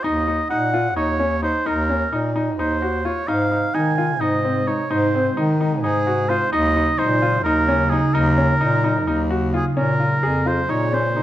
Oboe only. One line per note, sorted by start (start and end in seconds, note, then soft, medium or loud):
0.03 0.49 D#5 medium
0.50 0.93 F#5 medium
0.96 1.40 C#5 medium
1.43 1.68 C5 medium
1.66 2.18 A#4 medium
2.59 3.07 C5 medium
3.05 3.29 C#5 medium
3.28 3.76 F5 medium
3.75 4.22 G#5 medium
4.21 4.69 D#5 medium
4.67 4.92 C#5 medium
4.90 5.43 C5 medium
5.83 6.31 G#4 medium
6.29 6.52 C5 medium
6.52 7.00 D#5 loud
6.99 7.43 C5 medium
7.44 7.91 A#4 medium
7.90 8.15 G#4 medium
8.14 9.30 A#4 medium
9.55 9.65 G#4 medium
9.78 10.49 A#4 medium
10.47 10.72 C5 medium
10.70 10.95 C#5 medium
10.94 11.23 C5 medium